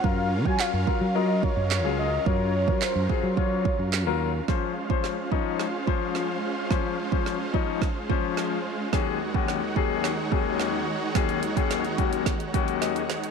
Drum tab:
HH |----------------|----------------|----------------|----------------|
CP |----x-------x---|----x-------x---|----------------|----------------|
SD |----o-------o---|----o-------o---|o---o---o---o---|o---o---o---o---|
BD |o--o--o---o-----|o--o--o-o-o-----|o--o--o---o-----|o--o--o-o-o-----|

HH |----------------|xxxxxxxxxxxxxxxx|
CP |----------------|----------------|
SD |o---o---o---o---|o---o---o---o-o-|
BD |o--o--o---o-----|o--o--o-o-o-----|